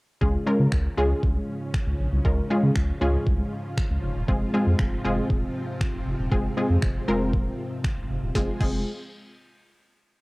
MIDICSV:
0, 0, Header, 1, 5, 480
1, 0, Start_track
1, 0, Key_signature, -4, "minor"
1, 0, Tempo, 508475
1, 203, Time_signature, 4, 2, 24, 8
1, 9641, End_track
2, 0, Start_track
2, 0, Title_t, "Synth pluck"
2, 0, Program_c, 0, 84
2, 199, Note_on_c, 0, 56, 83
2, 201, Note_on_c, 0, 61, 72
2, 203, Note_on_c, 0, 65, 77
2, 204, Note_on_c, 0, 68, 89
2, 326, Note_off_c, 0, 56, 0
2, 327, Note_off_c, 0, 61, 0
2, 328, Note_off_c, 0, 65, 0
2, 328, Note_off_c, 0, 68, 0
2, 440, Note_on_c, 0, 56, 79
2, 440, Note_on_c, 0, 61, 76
2, 442, Note_on_c, 0, 65, 76
2, 444, Note_on_c, 0, 70, 94
2, 691, Note_off_c, 0, 56, 0
2, 691, Note_off_c, 0, 61, 0
2, 692, Note_off_c, 0, 65, 0
2, 693, Note_off_c, 0, 70, 0
2, 920, Note_on_c, 0, 56, 82
2, 921, Note_on_c, 0, 61, 80
2, 923, Note_on_c, 0, 65, 81
2, 925, Note_on_c, 0, 68, 97
2, 1420, Note_off_c, 0, 56, 0
2, 1421, Note_off_c, 0, 61, 0
2, 1422, Note_off_c, 0, 65, 0
2, 1423, Note_off_c, 0, 68, 0
2, 2121, Note_on_c, 0, 56, 85
2, 2123, Note_on_c, 0, 61, 78
2, 2125, Note_on_c, 0, 65, 72
2, 2127, Note_on_c, 0, 70, 88
2, 2247, Note_off_c, 0, 56, 0
2, 2248, Note_off_c, 0, 61, 0
2, 2249, Note_off_c, 0, 65, 0
2, 2250, Note_off_c, 0, 70, 0
2, 2362, Note_on_c, 0, 56, 87
2, 2364, Note_on_c, 0, 61, 74
2, 2366, Note_on_c, 0, 65, 76
2, 2367, Note_on_c, 0, 68, 91
2, 2612, Note_off_c, 0, 56, 0
2, 2613, Note_off_c, 0, 61, 0
2, 2614, Note_off_c, 0, 65, 0
2, 2614, Note_off_c, 0, 68, 0
2, 2842, Note_on_c, 0, 56, 85
2, 2844, Note_on_c, 0, 61, 81
2, 2845, Note_on_c, 0, 65, 79
2, 2846, Note_on_c, 0, 68, 94
2, 3341, Note_off_c, 0, 56, 0
2, 3342, Note_off_c, 0, 61, 0
2, 3343, Note_off_c, 0, 65, 0
2, 3343, Note_off_c, 0, 68, 0
2, 4043, Note_on_c, 0, 56, 81
2, 4044, Note_on_c, 0, 60, 76
2, 4046, Note_on_c, 0, 65, 76
2, 4047, Note_on_c, 0, 68, 87
2, 4168, Note_off_c, 0, 56, 0
2, 4168, Note_off_c, 0, 60, 0
2, 4169, Note_off_c, 0, 65, 0
2, 4170, Note_off_c, 0, 68, 0
2, 4283, Note_on_c, 0, 56, 86
2, 4284, Note_on_c, 0, 60, 75
2, 4285, Note_on_c, 0, 65, 75
2, 4287, Note_on_c, 0, 68, 93
2, 4532, Note_off_c, 0, 56, 0
2, 4533, Note_off_c, 0, 60, 0
2, 4534, Note_off_c, 0, 65, 0
2, 4535, Note_off_c, 0, 68, 0
2, 4762, Note_on_c, 0, 56, 89
2, 4765, Note_on_c, 0, 60, 79
2, 4766, Note_on_c, 0, 65, 79
2, 4768, Note_on_c, 0, 68, 93
2, 5261, Note_off_c, 0, 56, 0
2, 5262, Note_off_c, 0, 60, 0
2, 5263, Note_off_c, 0, 65, 0
2, 5264, Note_off_c, 0, 68, 0
2, 5962, Note_on_c, 0, 56, 84
2, 5963, Note_on_c, 0, 60, 76
2, 5965, Note_on_c, 0, 65, 77
2, 5966, Note_on_c, 0, 68, 93
2, 6087, Note_off_c, 0, 56, 0
2, 6088, Note_off_c, 0, 60, 0
2, 6089, Note_off_c, 0, 65, 0
2, 6089, Note_off_c, 0, 68, 0
2, 6203, Note_on_c, 0, 56, 82
2, 6205, Note_on_c, 0, 60, 75
2, 6206, Note_on_c, 0, 65, 74
2, 6208, Note_on_c, 0, 68, 89
2, 6452, Note_off_c, 0, 56, 0
2, 6453, Note_off_c, 0, 60, 0
2, 6454, Note_off_c, 0, 65, 0
2, 6455, Note_off_c, 0, 68, 0
2, 6683, Note_on_c, 0, 56, 87
2, 6684, Note_on_c, 0, 60, 82
2, 6686, Note_on_c, 0, 65, 83
2, 6687, Note_on_c, 0, 70, 94
2, 7181, Note_off_c, 0, 56, 0
2, 7182, Note_off_c, 0, 60, 0
2, 7183, Note_off_c, 0, 65, 0
2, 7184, Note_off_c, 0, 70, 0
2, 7884, Note_on_c, 0, 56, 83
2, 7884, Note_on_c, 0, 60, 74
2, 7884, Note_on_c, 0, 65, 77
2, 7884, Note_on_c, 0, 68, 88
2, 8017, Note_off_c, 0, 56, 0
2, 8017, Note_off_c, 0, 60, 0
2, 8017, Note_off_c, 0, 65, 0
2, 8017, Note_off_c, 0, 68, 0
2, 8123, Note_on_c, 0, 60, 74
2, 8123, Note_on_c, 0, 65, 75
2, 8124, Note_on_c, 0, 56, 80
2, 8124, Note_on_c, 0, 68, 92
2, 8346, Note_off_c, 0, 60, 0
2, 8347, Note_off_c, 0, 56, 0
2, 8347, Note_off_c, 0, 65, 0
2, 8347, Note_off_c, 0, 68, 0
2, 9641, End_track
3, 0, Start_track
3, 0, Title_t, "String machine"
3, 0, Program_c, 1, 50
3, 203, Note_on_c, 1, 44, 76
3, 203, Note_on_c, 1, 53, 72
3, 204, Note_on_c, 1, 49, 70
3, 204, Note_on_c, 1, 61, 70
3, 204, Note_on_c, 1, 65, 88
3, 4006, Note_off_c, 1, 49, 0
3, 4006, Note_off_c, 1, 61, 0
3, 4046, Note_on_c, 1, 48, 71
3, 4046, Note_on_c, 1, 60, 72
3, 7845, Note_off_c, 1, 53, 0
3, 7846, Note_off_c, 1, 44, 0
3, 7846, Note_off_c, 1, 65, 0
3, 7847, Note_off_c, 1, 48, 0
3, 7847, Note_off_c, 1, 60, 0
3, 7885, Note_on_c, 1, 48, 72
3, 7885, Note_on_c, 1, 65, 66
3, 7885, Note_on_c, 1, 68, 76
3, 7886, Note_on_c, 1, 53, 62
3, 7886, Note_on_c, 1, 56, 61
3, 8107, Note_off_c, 1, 48, 0
3, 8107, Note_off_c, 1, 65, 0
3, 8108, Note_off_c, 1, 53, 0
3, 8108, Note_off_c, 1, 56, 0
3, 8108, Note_off_c, 1, 68, 0
3, 9641, End_track
4, 0, Start_track
4, 0, Title_t, "Sub bass"
4, 0, Program_c, 2, 38
4, 202, Note_on_c, 2, 37, 106
4, 351, Note_off_c, 2, 37, 0
4, 562, Note_on_c, 2, 49, 87
4, 636, Note_off_c, 2, 49, 0
4, 683, Note_on_c, 2, 37, 97
4, 831, Note_off_c, 2, 37, 0
4, 922, Note_on_c, 2, 37, 89
4, 1071, Note_off_c, 2, 37, 0
4, 1162, Note_on_c, 2, 36, 89
4, 1311, Note_off_c, 2, 36, 0
4, 1762, Note_on_c, 2, 37, 87
4, 1836, Note_off_c, 2, 37, 0
4, 1883, Note_on_c, 2, 34, 88
4, 1957, Note_off_c, 2, 34, 0
4, 2003, Note_on_c, 2, 36, 89
4, 2077, Note_off_c, 2, 36, 0
4, 2123, Note_on_c, 2, 37, 113
4, 2272, Note_off_c, 2, 37, 0
4, 2483, Note_on_c, 2, 49, 97
4, 2557, Note_off_c, 2, 49, 0
4, 2604, Note_on_c, 2, 37, 93
4, 2752, Note_off_c, 2, 37, 0
4, 2843, Note_on_c, 2, 37, 87
4, 2991, Note_off_c, 2, 37, 0
4, 3084, Note_on_c, 2, 36, 100
4, 3232, Note_off_c, 2, 36, 0
4, 3684, Note_on_c, 2, 37, 99
4, 3758, Note_off_c, 2, 37, 0
4, 3804, Note_on_c, 2, 29, 90
4, 3878, Note_off_c, 2, 29, 0
4, 3924, Note_on_c, 2, 27, 94
4, 3998, Note_off_c, 2, 27, 0
4, 4044, Note_on_c, 2, 29, 108
4, 4192, Note_off_c, 2, 29, 0
4, 4404, Note_on_c, 2, 41, 102
4, 4478, Note_off_c, 2, 41, 0
4, 4524, Note_on_c, 2, 29, 96
4, 4672, Note_off_c, 2, 29, 0
4, 4764, Note_on_c, 2, 29, 89
4, 4912, Note_off_c, 2, 29, 0
4, 5003, Note_on_c, 2, 27, 89
4, 5151, Note_off_c, 2, 27, 0
4, 5605, Note_on_c, 2, 29, 83
4, 5678, Note_off_c, 2, 29, 0
4, 5724, Note_on_c, 2, 29, 89
4, 5798, Note_off_c, 2, 29, 0
4, 5844, Note_on_c, 2, 27, 89
4, 5918, Note_off_c, 2, 27, 0
4, 5963, Note_on_c, 2, 29, 106
4, 6111, Note_off_c, 2, 29, 0
4, 6323, Note_on_c, 2, 41, 94
4, 6397, Note_off_c, 2, 41, 0
4, 6443, Note_on_c, 2, 29, 96
4, 6592, Note_off_c, 2, 29, 0
4, 6684, Note_on_c, 2, 29, 89
4, 6923, Note_on_c, 2, 27, 93
4, 6937, Note_off_c, 2, 29, 0
4, 7071, Note_off_c, 2, 27, 0
4, 7523, Note_on_c, 2, 29, 98
4, 7597, Note_off_c, 2, 29, 0
4, 7643, Note_on_c, 2, 29, 91
4, 7717, Note_off_c, 2, 29, 0
4, 7762, Note_on_c, 2, 27, 86
4, 7837, Note_off_c, 2, 27, 0
4, 7884, Note_on_c, 2, 29, 99
4, 8017, Note_off_c, 2, 29, 0
4, 8123, Note_on_c, 2, 29, 101
4, 8347, Note_off_c, 2, 29, 0
4, 9641, End_track
5, 0, Start_track
5, 0, Title_t, "Drums"
5, 202, Note_on_c, 9, 36, 111
5, 296, Note_off_c, 9, 36, 0
5, 679, Note_on_c, 9, 26, 111
5, 683, Note_on_c, 9, 36, 103
5, 774, Note_off_c, 9, 26, 0
5, 777, Note_off_c, 9, 36, 0
5, 1162, Note_on_c, 9, 36, 102
5, 1257, Note_off_c, 9, 36, 0
5, 1643, Note_on_c, 9, 36, 106
5, 1645, Note_on_c, 9, 26, 106
5, 1737, Note_off_c, 9, 36, 0
5, 1739, Note_off_c, 9, 26, 0
5, 2123, Note_on_c, 9, 36, 111
5, 2218, Note_off_c, 9, 36, 0
5, 2601, Note_on_c, 9, 26, 108
5, 2604, Note_on_c, 9, 36, 108
5, 2696, Note_off_c, 9, 26, 0
5, 2699, Note_off_c, 9, 36, 0
5, 3084, Note_on_c, 9, 36, 104
5, 3178, Note_off_c, 9, 36, 0
5, 3564, Note_on_c, 9, 36, 110
5, 3565, Note_on_c, 9, 26, 109
5, 3658, Note_off_c, 9, 36, 0
5, 3660, Note_off_c, 9, 26, 0
5, 4044, Note_on_c, 9, 36, 115
5, 4138, Note_off_c, 9, 36, 0
5, 4521, Note_on_c, 9, 26, 112
5, 4524, Note_on_c, 9, 36, 114
5, 4615, Note_off_c, 9, 26, 0
5, 4618, Note_off_c, 9, 36, 0
5, 5003, Note_on_c, 9, 36, 105
5, 5098, Note_off_c, 9, 36, 0
5, 5483, Note_on_c, 9, 36, 108
5, 5485, Note_on_c, 9, 26, 110
5, 5578, Note_off_c, 9, 36, 0
5, 5579, Note_off_c, 9, 26, 0
5, 5963, Note_on_c, 9, 36, 116
5, 6057, Note_off_c, 9, 36, 0
5, 6441, Note_on_c, 9, 26, 116
5, 6444, Note_on_c, 9, 36, 107
5, 6535, Note_off_c, 9, 26, 0
5, 6538, Note_off_c, 9, 36, 0
5, 6923, Note_on_c, 9, 36, 99
5, 7018, Note_off_c, 9, 36, 0
5, 7404, Note_on_c, 9, 36, 115
5, 7406, Note_on_c, 9, 26, 112
5, 7498, Note_off_c, 9, 36, 0
5, 7500, Note_off_c, 9, 26, 0
5, 7884, Note_on_c, 9, 36, 107
5, 7884, Note_on_c, 9, 38, 81
5, 7978, Note_off_c, 9, 36, 0
5, 7978, Note_off_c, 9, 38, 0
5, 8124, Note_on_c, 9, 36, 104
5, 8124, Note_on_c, 9, 49, 86
5, 8218, Note_off_c, 9, 36, 0
5, 8218, Note_off_c, 9, 49, 0
5, 9641, End_track
0, 0, End_of_file